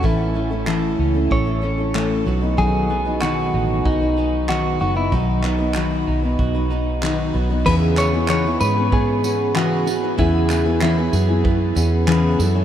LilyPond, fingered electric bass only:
\new Staff \with { instrumentName = "Fingered electric bass" } { \clef bass \time 4/4 \key e \major \tempo 4 = 95 a,,4. cis,8 a,,4. b,,8~ | b,,4. a,,8 b,,4. fis,,8 | b,,4. b,,8 b,,4. b,,8 | e,4. gis,2~ gis,8 |
e,4. fis,4 e,4 fis,8 | }